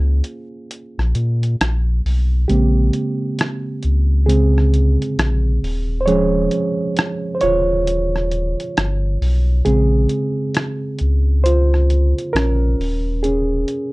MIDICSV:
0, 0, Header, 1, 4, 480
1, 0, Start_track
1, 0, Tempo, 895522
1, 1335, Time_signature, 4, 2, 24, 8
1, 7464, End_track
2, 0, Start_track
2, 0, Title_t, "Reed electric piano"
2, 0, Program_c, 0, 4
2, 0, Control_c, 0, 64, 127
2, 0, Note_on_c, 0, 58, 77
2, 0, Note_on_c, 0, 61, 64
2, 0, Note_on_c, 0, 65, 61
2, 0, Note_on_c, 0, 68, 68
2, 0, Note_on_c, 0, 72, 79
2, 0, Note_on_c, 0, 77, 56
2, 0, Note_on_c, 0, 80, 59
2, 1058, Note_off_c, 0, 58, 0
2, 1068, Note_off_c, 0, 61, 0
2, 1077, Note_off_c, 0, 65, 0
2, 1085, Note_off_c, 0, 68, 0
2, 1095, Note_off_c, 0, 72, 0
2, 1329, Note_on_c, 0, 67, 81
2, 1333, Note_on_c, 0, 49, 48
2, 1337, Note_on_c, 0, 56, 50
2, 1340, Note_on_c, 0, 60, 57
2, 1342, Control_c, 0, 64, 0
2, 1343, Note_off_c, 0, 77, 0
2, 1343, Note_on_c, 0, 58, 63
2, 1346, Note_off_c, 0, 80, 0
2, 1445, Control_c, 0, 64, 127
2, 2278, Note_off_c, 0, 58, 0
2, 2284, Note_off_c, 0, 49, 0
2, 2284, Note_on_c, 0, 68, 76
2, 2289, Note_off_c, 0, 56, 0
2, 2289, Note_off_c, 0, 60, 0
2, 2290, Note_on_c, 0, 49, 43
2, 2295, Note_on_c, 0, 56, 43
2, 2295, Note_on_c, 0, 60, 66
2, 2321, Note_off_c, 0, 67, 0
2, 2511, Note_off_c, 0, 49, 0
2, 2514, Note_off_c, 0, 56, 0
2, 3022, Control_c, 0, 64, 0
2, 3123, Control_c, 0, 64, 127
2, 3206, Note_off_c, 0, 60, 0
2, 3220, Note_on_c, 0, 72, 71
2, 3246, Note_on_c, 0, 73, 97
2, 3249, Note_off_c, 0, 68, 0
2, 3252, Note_off_c, 0, 72, 0
2, 3252, Note_on_c, 0, 53, 54
2, 3254, Note_on_c, 0, 56, 49
2, 3257, Note_on_c, 0, 68, 82
2, 3258, Note_on_c, 0, 61, 59
2, 3926, Note_off_c, 0, 68, 0
2, 3938, Note_on_c, 0, 72, 65
2, 3952, Note_off_c, 0, 53, 0
2, 3953, Note_off_c, 0, 56, 0
2, 3955, Note_off_c, 0, 61, 0
2, 3963, Note_off_c, 0, 73, 0
2, 3971, Note_off_c, 0, 72, 0
2, 3974, Note_on_c, 0, 73, 97
2, 3982, Note_on_c, 0, 65, 67
2, 4913, Note_off_c, 0, 73, 0
2, 4917, Note_off_c, 0, 65, 0
2, 5171, Note_on_c, 0, 49, 52
2, 5172, Note_on_c, 0, 68, 82
2, 5174, Note_on_c, 0, 56, 45
2, 5178, Note_on_c, 0, 60, 63
2, 5182, Control_c, 0, 64, 0
2, 5286, Control_c, 0, 64, 127
2, 5514, Note_off_c, 0, 49, 0
2, 5516, Note_off_c, 0, 56, 0
2, 6116, Note_off_c, 0, 60, 0
2, 6130, Note_on_c, 0, 72, 96
2, 6142, Note_on_c, 0, 65, 67
2, 6163, Note_off_c, 0, 68, 0
2, 6597, Note_off_c, 0, 65, 0
2, 6609, Note_on_c, 0, 70, 92
2, 6622, Note_on_c, 0, 61, 75
2, 6627, Note_off_c, 0, 72, 0
2, 6863, Control_c, 0, 64, 0
2, 6951, Control_c, 0, 64, 127
2, 7077, Note_off_c, 0, 61, 0
2, 7090, Note_on_c, 0, 68, 77
2, 7102, Note_on_c, 0, 61, 60
2, 7107, Note_off_c, 0, 70, 0
2, 7464, Note_off_c, 0, 61, 0
2, 7464, Note_off_c, 0, 68, 0
2, 7464, End_track
3, 0, Start_track
3, 0, Title_t, "Sub bass"
3, 0, Program_c, 1, 38
3, 0, Note_on_c, 1, 37, 97
3, 116, Note_off_c, 1, 37, 0
3, 526, Note_on_c, 1, 34, 86
3, 608, Note_off_c, 1, 34, 0
3, 618, Note_on_c, 1, 46, 97
3, 835, Note_off_c, 1, 46, 0
3, 861, Note_on_c, 1, 34, 87
3, 1077, Note_off_c, 1, 34, 0
3, 1101, Note_on_c, 1, 35, 89
3, 1317, Note_off_c, 1, 35, 0
3, 1340, Note_on_c, 1, 34, 111
3, 1556, Note_off_c, 1, 34, 0
3, 2059, Note_on_c, 1, 37, 94
3, 2664, Note_off_c, 1, 37, 0
3, 2777, Note_on_c, 1, 34, 96
3, 2995, Note_off_c, 1, 34, 0
3, 3016, Note_on_c, 1, 27, 90
3, 3474, Note_off_c, 1, 27, 0
3, 3981, Note_on_c, 1, 27, 97
3, 4585, Note_off_c, 1, 27, 0
3, 4702, Note_on_c, 1, 31, 93
3, 4917, Note_off_c, 1, 31, 0
3, 4938, Note_on_c, 1, 35, 107
3, 5155, Note_off_c, 1, 35, 0
3, 5180, Note_on_c, 1, 34, 101
3, 5396, Note_off_c, 1, 34, 0
3, 5900, Note_on_c, 1, 37, 89
3, 6505, Note_off_c, 1, 37, 0
3, 6617, Note_on_c, 1, 34, 100
3, 6835, Note_off_c, 1, 34, 0
3, 6854, Note_on_c, 1, 27, 96
3, 7313, Note_off_c, 1, 27, 0
3, 7464, End_track
4, 0, Start_track
4, 0, Title_t, "Drums"
4, 128, Note_on_c, 9, 42, 66
4, 182, Note_off_c, 9, 42, 0
4, 379, Note_on_c, 9, 42, 88
4, 433, Note_off_c, 9, 42, 0
4, 532, Note_on_c, 9, 37, 34
4, 585, Note_off_c, 9, 37, 0
4, 616, Note_on_c, 9, 42, 64
4, 670, Note_off_c, 9, 42, 0
4, 767, Note_on_c, 9, 42, 51
4, 820, Note_off_c, 9, 42, 0
4, 862, Note_on_c, 9, 42, 87
4, 865, Note_on_c, 9, 37, 119
4, 915, Note_off_c, 9, 42, 0
4, 918, Note_off_c, 9, 37, 0
4, 1105, Note_on_c, 9, 46, 41
4, 1158, Note_off_c, 9, 46, 0
4, 1337, Note_on_c, 9, 42, 65
4, 1391, Note_off_c, 9, 42, 0
4, 1572, Note_on_c, 9, 42, 59
4, 1626, Note_off_c, 9, 42, 0
4, 1815, Note_on_c, 9, 42, 77
4, 1827, Note_on_c, 9, 37, 127
4, 1869, Note_off_c, 9, 42, 0
4, 1881, Note_off_c, 9, 37, 0
4, 2051, Note_on_c, 9, 42, 58
4, 2104, Note_off_c, 9, 42, 0
4, 2302, Note_on_c, 9, 42, 89
4, 2355, Note_off_c, 9, 42, 0
4, 2454, Note_on_c, 9, 37, 35
4, 2508, Note_off_c, 9, 37, 0
4, 2539, Note_on_c, 9, 42, 60
4, 2592, Note_off_c, 9, 42, 0
4, 2690, Note_on_c, 9, 42, 53
4, 2744, Note_off_c, 9, 42, 0
4, 2781, Note_on_c, 9, 42, 80
4, 2784, Note_on_c, 9, 37, 107
4, 2835, Note_off_c, 9, 42, 0
4, 2838, Note_off_c, 9, 37, 0
4, 3024, Note_on_c, 9, 46, 41
4, 3077, Note_off_c, 9, 46, 0
4, 3257, Note_on_c, 9, 42, 70
4, 3310, Note_off_c, 9, 42, 0
4, 3490, Note_on_c, 9, 42, 62
4, 3544, Note_off_c, 9, 42, 0
4, 3734, Note_on_c, 9, 42, 79
4, 3746, Note_on_c, 9, 37, 123
4, 3787, Note_off_c, 9, 42, 0
4, 3799, Note_off_c, 9, 37, 0
4, 3970, Note_on_c, 9, 42, 67
4, 4024, Note_off_c, 9, 42, 0
4, 4220, Note_on_c, 9, 42, 95
4, 4274, Note_off_c, 9, 42, 0
4, 4372, Note_on_c, 9, 37, 30
4, 4426, Note_off_c, 9, 37, 0
4, 4457, Note_on_c, 9, 42, 53
4, 4510, Note_off_c, 9, 42, 0
4, 4609, Note_on_c, 9, 42, 50
4, 4663, Note_off_c, 9, 42, 0
4, 4702, Note_on_c, 9, 42, 72
4, 4705, Note_on_c, 9, 37, 115
4, 4755, Note_off_c, 9, 42, 0
4, 4758, Note_off_c, 9, 37, 0
4, 4943, Note_on_c, 9, 46, 41
4, 4996, Note_off_c, 9, 46, 0
4, 5175, Note_on_c, 9, 42, 72
4, 5229, Note_off_c, 9, 42, 0
4, 5410, Note_on_c, 9, 42, 62
4, 5464, Note_off_c, 9, 42, 0
4, 5652, Note_on_c, 9, 42, 78
4, 5664, Note_on_c, 9, 37, 127
4, 5706, Note_off_c, 9, 42, 0
4, 5718, Note_off_c, 9, 37, 0
4, 5888, Note_on_c, 9, 42, 59
4, 5942, Note_off_c, 9, 42, 0
4, 6141, Note_on_c, 9, 42, 91
4, 6195, Note_off_c, 9, 42, 0
4, 6292, Note_on_c, 9, 37, 35
4, 6346, Note_off_c, 9, 37, 0
4, 6378, Note_on_c, 9, 42, 58
4, 6432, Note_off_c, 9, 42, 0
4, 6531, Note_on_c, 9, 42, 53
4, 6584, Note_off_c, 9, 42, 0
4, 6624, Note_on_c, 9, 42, 75
4, 6627, Note_on_c, 9, 37, 98
4, 6678, Note_off_c, 9, 42, 0
4, 6681, Note_off_c, 9, 37, 0
4, 6865, Note_on_c, 9, 46, 37
4, 6919, Note_off_c, 9, 46, 0
4, 7096, Note_on_c, 9, 42, 71
4, 7150, Note_off_c, 9, 42, 0
4, 7332, Note_on_c, 9, 42, 60
4, 7385, Note_off_c, 9, 42, 0
4, 7464, End_track
0, 0, End_of_file